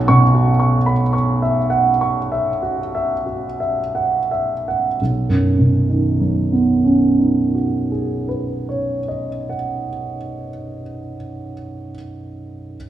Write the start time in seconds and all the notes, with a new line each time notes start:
Already playing: B1 F#4 F#5
0.08 B2 C#6
0.34 F#4
0.60 C#6
0.86 B5
1.13 C#6
1.42 E5
1.70 F#5
2.01 C#6
2.32 E5
2.62 F#4
2.95 E5
3.26 F#4
3.60 E5
3.95 F#5
4.31 E5
4.68 F#5
5.01 B1
5.29 F#2
5.59 B2
5.90 D#3
6.20 F#3
6.53 B3
6.84 C#4
7.19 D#4
7.55 F#4
7.92 G#4
8.29 B4
8.69 C#5
9.08 D#5
9.49 F#5